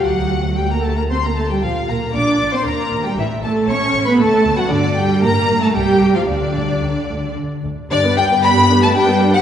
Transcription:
X:1
M:3/4
L:1/16
Q:1/4=115
K:Dphr
V:1 name="Violin section"
^f4 g b a b c' b a g | f2 b2 d'3 c' b3 g | =e2 a2 ^c'3 =b a3 ^f | d2 g2 b3 a g3 f |
d8 z4 | [K:G] d2 g2 b3 a g3 f |]
V:2 name="Violin section"
^f4 g b a b c' b a g | f2 b2 d'3 c' b3 g | =e2 a2 ^c'3 =b a3 ^f | d2 g2 b3 a g3 f |
d8 z4 | [K:G] d2 g2 b3 a g3 f |]
V:3 name="Viola section"
^F4 G B A B c B A G | F2 B2 d3 c B3 G | =E2 A2 ^c3 =B A3 ^F | D2 G2 B3 A G3 F |
D8 z4 | [K:G] [DG] [B,B] [DG] [B,B] [DG] [B,B] [DG] [B,B] [DG] [B,B] [DG] [B,B] |]
V:4 name="Cello section"
^F,4 G, B, A, B, C B, A, G, | F,2 B,2 D3 C B,3 G, | =E,2 A,2 ^C3 =B, A,3 ^F, | D,2 G,2 B,3 A, G,3 F, |
D,8 z4 | [K:G] D,2 G,2 B,3 A, G,3 F, |]
V:5 name="Double bass section" clef=bass
D,,8- D,,2 z2 | B,,,2 B,,,2 B,,,2 B,,,2 E,,2 E,,2 | A,,,2 A,,,2 A,,,2 A,,,2 D,,2 D,,2 | G,,2 G,,2 G,,2 G,,2 C,,2 C,,2 |
D,,2 D,,2 D,,2 D,,2 D,,2 D,,2 | [K:G] G,,12 |]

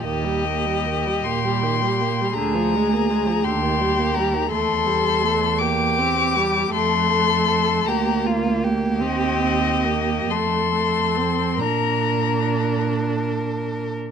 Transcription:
X:1
M:6/8
L:1/16
Q:3/8=52
K:Bb
V:1 name="Violin"
e6 c'6 | b6 c'4 b2 | c'6 d'6 | c'6 b2 z4 |
e6 c'6 | b6 z6 |]
V:2 name="Violin"
G12 | _A6 G6 | A6 G6 | A6 G2 F2 G2- |
G6 A6 | B8- B3 z |]
V:3 name="Viola" clef=bass
E, G, B, G, E, G, B, G, E, G, B, G, | D, F, _A, B, A, F, D, E, G, B, G, E, | A,2 G,2 A,2 B,2 C2 G,2 | A,6 B,6 |
C2 C2 B,2 A,2 A,2 C2 | D8- D3 z |]
V:4 name="Cello" clef=bass
E,,6 B,,6 | D,,6 E,,6 | =E,,12 | F,,6 D,,6 |
E,,6 F,,6 | B,,8- B,,3 z |]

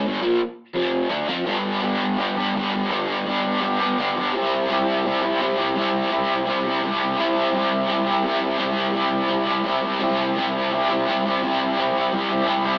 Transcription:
X:1
M:4/4
L:1/8
Q:1/4=169
K:Clyd
V:1 name="Overdriven electric guitar"
[G,,D,G,] [_B,,=F,_B,] z2 [=F,,C,F,]2 [D,A,D] [F,C=F] | [G,,D,G,B,DG]2 [G,B,DG]2 [G,B,DG] [G,B,DG] [G,,D,G,B,DG] [G,B,DG] | [G,,D,G,B,DG]2 [G,B,DG]2 [G,B,DG] [G,B,DG] [G,,D,G,B,DG] [G,B,DG] | [C,G,CEG]2 [G,CEG]2 [G,CEG] [CEG] [C,G,CEG] [CEG] |
[C,G,CEG]2 [G,CEG]2 [G,CEG] [CEG] [C,G,CEG] [CEG] | [C,G,CEG]2 [G,CEG]2 [G,CEG] [CEG] [C,G,CEG] [CEG] | [C,G,CEG]2 [G,CEG]2 [G,CEG] [CEG] [C,G,CEG] [CEG] | [C,G,CEG]2 [G,CEG]2 [G,CEG] [CEG] [C,G,CEG] [CEG] |
[C,G,CEG]2 [G,CEG]2 [G,CEG] [CEG] [C,G,CEG] [CEG] |]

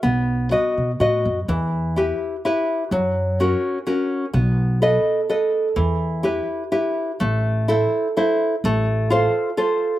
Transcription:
X:1
M:3/4
L:1/8
Q:"Swing" 1/4=126
K:Em
V:1 name="Nylon-string guitar"
B,2 [FB^d]2 [FBd]2 | E,2 [EGB]2 [EGB]2 | F,2 [^CF^A]2 [CFA]2 | B,2 [AB^d]2 [ABd]2 |
E,2 [EGB]2 [EGB]2 | [K:Am] A,2 [EAc]2 [EAc]2 | A,2 [FAc]2 [FAc]2 |]
V:2 name="Upright bass" clef=bass
B,,,3 B,, A,, F,, | E,,4 z2 | F,,4 z2 | B,,,4 z2 |
E,,4 z2 | [K:Am] A,,,4 z2 | A,,,4 z2 |]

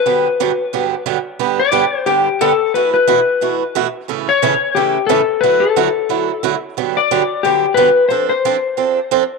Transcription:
X:1
M:4/4
L:1/16
Q:"Swing" 1/4=179
K:G
V:1 name="Electric slide guitar"
B12 z4 | z2 d6 G4 A4 | B2 B12 z2 | z2 ^c6 G4 A4 |
B2 A12 z2 | z2 d6 G4 B4 | c2 c12 z2 |]
V:2 name="Steel-string acoustic guitar"
[G,,D,F,B,DG]2 z2 [G,,D,F,B,DG] z3 [G,,D,F,B,DG]2 z2 [G,,D,F,B,DG] z3 | [G,,D,G,B,DG]2 z2 [G,,D,G,B,DG] z3 [G,,D,G,B,DG]2 z2 [G,,D,G,B,DG] z3 | [B,,E,A,EF]2 z2 [B,,E,A,EF] z3 [B,,E,A,EF]2 z2 [B,,E,A,EF] z3 | [A,,^C,E,A,^CA]2 z2 [A,,C,E,A,CA] z3 [A,,C,E,A,CA]2 z2 [A,,C,E,A,CA] z3 |
[D,F,A,EF]2 z2 [D,F,A,EF] z3 [D,F,A,EF]2 z2 [D,F,A,EF] z3 | [G,,D,F,B,DG]2 z2 [G,,D,F,B,DG] z3 [G,,D,F,B,DG]2 z2 [G,,D,F,B,DG] z3 | [=F,CDA]2 z2 [F,CDA] z3 [F,CDA]2 z2 [F,CDA] z3 |]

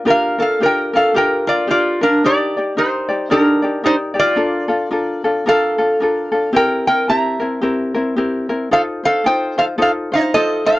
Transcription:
X:1
M:4/4
L:1/8
Q:"Swing" 1/4=111
K:Gm
V:1 name="Resonator guitar played with a steel bar"
[Bf] [Af] [Bg] [Af] [Bg] [Fd] [Fd] [DB] | [Gd]2 [Ec]2 [DB]2 [Ec] [Fd]- | [Fd]4 [Af]4 | [Bg] [Bg] [=eb]4- [eb] z |
[Af] [Af] [cg] [Af] [Af] [Ec] [Ae] [Af] |]
V:2 name="Ukulele"
[DFGB] [DFB] [DFGB] [DFB] [DFGB] [DFB] [DFGB] [DFB] | [EGBd] [EGd] [EGBd] [EGd] [EGBd] [EGd] [EGBd] [EGd] | [DFAB] [DFA] [DFAB] [DFA] [DFAB] [DFA] [DFAB] [DFA] | [C=EGB] [CEB] [CEGB] [CEB] [CEGB] [CEB] [CEGB] [CEB] |
[EFAc] [EFc] [EFAc] [EFc] [EFAc] [EFc] [EFAc] [EFc] |]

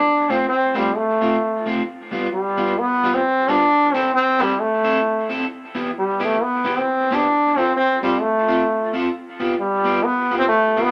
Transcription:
X:1
M:4/4
L:1/16
Q:"Swing" 1/4=132
K:Gmix
V:1 name="Clean electric guitar"
z2 [A,CF]2 z2 [A,CF]2 z2 [A,CF]2 z2 [A,CF]2 | z2 [G,B,F]2 z2 [G,B,F]2 z2 [G,B,F]2 z2 [G,B,F]2 | z2 [CEA]2 z2 [CEA]2 z2 [CEA]2 z2 [CEA]2 | z2 [B,EG]2 z2 [B,EG]2 z2 [B,EG]2 z2 [B,EG]2 |
z2 [CFA]2 z2 [CFA]2 z2 [CFA]2 z2 [CFA]2 | z2 [B,FG]2 z2 [B,FG]2 z2 [B,FG]2 z2 [B,FG]2 |]
V:2 name="Trombone"
D2 C2 C2 G,2 A,6 z2 | z4 G,4 B,3 C3 D2- | D2 C2 C2 G,2 A,6 z2 | z4 G,2 A,2 B,3 C3 D2- |
D2 C2 C2 G,2 A,6 z2 | z4 G,4 B,3 C A,3 B, |]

